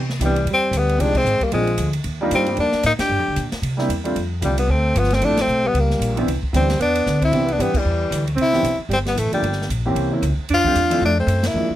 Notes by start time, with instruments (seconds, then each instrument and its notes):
Already playing: upright bass C3
0.09 snare
0.19 upright bass C2, grand piano E3 B3 C4 D4 G4, hi-hat pedal, ride
0.24 alto saxophone E3, tenor saxophone G3
0.36 ride
0.45 upright bass E2, ride
0.50 alto saxophone G3, tenor saxophone C4
0.71 upright bass D2, hi-hat pedal, ride
0.76 alto saxophone G3, tenor saxophone B3
0.89 ride
0.98 upright bass C2, grand piano F3 G#3 C4 D#4 G4, alto saxophone G#3, tenor saxophone D4, ride
1.15 alto saxophone G#3, tenor saxophone C4, kick, crash
1.25 upright bass G#1, hi-hat pedal
1.40 alto saxophone G3, tenor saxophone A#3, muted upright bass stroke, kick, ride
1.52 upright bass A#1, alto saxophone F3, grand piano G#3 A#3 C4 D4 F4, tenor saxophone G#3, ride
1.67 ride
1.78 upright bass D2, hi-hat pedal, ride
1.93 ride
2.04 upright bass D#2, ride
2.21 grand piano G3 A#3 D4 D#4 F4
2.31 upright bass G2, alto saxophone G3, hi-hat pedal, ride
2.35 tenor saxophone C4
2.46 grand piano G3 A#3 D4 D#4 G4, ride
2.57 upright bass F2, alto saxophone A#3, tenor saxophone D4, ride
2.72 muted upright bass stroke, snare
2.83 upright bass A2, alto saxophone A#3, tenor saxophone D#4, hi-hat pedal, ride
2.99 alto saxophone D4, tenor saxophone G4, muted upright bass stroke, snare, ride
3.09 upright bass G2
3.19 upright bass F2
3.28 upright bass D2
3.36 upright bass A#2, hi-hat pedal, ride
3.52 muted upright bass stroke, snare, ride
3.62 upright bass C3, ride
3.77 grand piano G3 A#3 C4 D4 E4, snare
3.89 upright bass E2, hi-hat pedal, ride
4.04 grand piano G3 A3 C4 D4 F4, ride
4.16 upright bass F2, ride
4.41 upright bass C2, alto saxophone D3, grand piano G3 A3 C4 D4 F4, tenor saxophone G3, hi-hat pedal, ride
4.58 alto saxophone G3, tenor saxophone B3, ride
4.68 upright bass D2, alto saxophone A3, tenor saxophone C4
4.94 upright bass G1, alto saxophone F3, hi-hat pedal, ride
4.99 tenor saxophone B3
5.04 snare
5.10 alto saxophone A3, tenor saxophone C4, snare, ride
5.21 upright bass A1, grand piano F3 A3 C4 D4 E4, tenor saxophone D4, ride
5.25 alto saxophone A3
5.37 alto saxophone A3, tenor saxophone C4, snare, ride
5.48 upright bass B1, hi-hat pedal
5.64 alto saxophone G3, tenor saxophone B3
5.74 upright bass C#2, alto saxophone G3, ride
5.80 tenor saxophone A#3
5.90 snare
5.99 upright bass A#1, hi-hat pedal, ride
6.16 grand piano E3 B3 C4 D4 E4, ride
6.27 upright bass C2, ride
6.42 muted upright bass stroke, kick
6.53 upright bass D2, grand piano E3 B3 C4 D4 G4, alto saxophone G3, tenor saxophone C4, hi-hat pedal, ride
6.69 snare, ride
6.79 upright bass E2, alto saxophone B3, tenor saxophone D4, ride
6.95 ride
7.06 upright bass D2, snare, hi-hat pedal
7.21 alto saxophone C4, tenor saxophone E4, kick, ride
7.32 upright bass C2, grand piano E3 B3 C4 D4 G4, ride
7.46 alto saxophone B3, ride
7.52 tenor saxophone D4
7.58 upright bass G2, grand piano E3 B3 C4 D4 G4, alto saxophone G3, hi-hat pedal, ride
7.62 tenor saxophone B3
7.74 alto saxophone E3, tenor saxophone G3, muted upright bass stroke, kick, crash
7.85 upright bass E2
8.11 upright bass D2, hi-hat pedal, ride
8.27 ride
8.36 upright bass C2, alto saxophone C4, ride
8.41 tenor saxophone E4
8.52 grand piano E3 B3 C4 D4 G4, snare
8.63 upright bass B1, hi-hat pedal, ride
8.78 muted upright bass stroke
8.89 upright bass G1, alto saxophone G3, ride
8.93 tenor saxophone C4
9.05 alto saxophone G3, tenor saxophone B3, snare, ride
9.15 upright bass A1, alto saxophone E3, tenor saxophone A3, hi-hat pedal, ride
9.32 alto saxophone D3, grand piano F3 A3 A#3 D4 G4, tenor saxophone G3, muted upright bass stroke, ride
9.42 upright bass G1, ride
9.52 snare
9.62 snare
9.69 upright bass A#1, hi-hat pedal, ride
9.86 grand piano E3 A#3 C4 C#4 G4
9.95 upright bass C2, ride
10.11 grand piano E3 A#3 C4 C#4 E4
10.22 upright bass C#2, hi-hat pedal, ride
10.38 muted upright bass stroke
10.49 upright bass F2, alto saxophone D4, ride
10.54 tenor saxophone F4
10.64 grand piano F3 A3 C4 D4 G4, kick
10.75 upright bass E2, hi-hat pedal, ride
10.90 grand piano F3 A3 C4 D4 E4, ride
11.01 upright bass F2, alto saxophone A3
11.05 tenor saxophone D4
11.19 alto saxophone A3, tenor saxophone C4
11.27 upright bass F#2, hi-hat pedal, ride
11.43 alto saxophone A#3, tenor saxophone E4, snare, ride
11.54 upright bass F2, grand piano F3 G#3 A#3 D4 E4
11.70 muted upright bass stroke